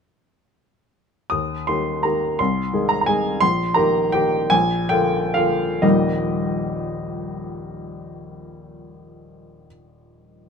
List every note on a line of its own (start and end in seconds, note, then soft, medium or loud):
1.30 1.67 D#2 soft
1.30 1.67 D#6 medium
1.67 2.01 D#3 soft
1.67 2.01 A#3 soft
1.67 2.01 G4 soft
1.67 2.04 C6 medium
2.03 2.36 D#3 soft
2.03 2.36 A#3 soft
2.03 2.36 G4 soft
2.03 2.39 A#5 medium
2.39 2.73 C2 medium
2.39 2.90 C6 medium
2.73 3.04 D#3 soft
2.73 3.04 G#3 soft
2.73 3.05 G#4 soft
2.89 3.00 A#5 medium
3.01 3.08 A#5 medium
3.06 3.38 D#3 soft
3.06 3.38 G#3 soft
3.06 3.39 G#4 soft
3.06 3.41 G#5 medium
3.41 3.75 A#1 medium
3.41 3.76 C6 loud
3.74 4.09 D#3 medium
3.74 4.10 A#3 medium
3.74 4.10 G4 medium
3.74 4.12 A#5 medium
4.12 4.48 D#3 medium
4.12 4.48 A#3 soft
4.12 4.48 G4 medium
4.12 4.50 G5 medium
4.50 4.89 A#1 medium
4.50 4.90 G#5 loud
4.89 5.31 D3 medium
4.89 5.31 A#3 soft
4.89 5.31 F4 medium
4.89 5.34 G5 medium
5.34 5.79 D3 soft
5.34 5.79 A#3 medium
5.34 5.80 F4 medium
5.34 5.82 F5 medium
5.82 9.67 D#1 medium
5.82 9.67 A#1 soft
5.82 9.67 G3 medium
5.82 9.68 A#3 soft
5.82 9.68 D#4 soft
5.82 9.68 G4 medium
5.82 9.67 D#5 medium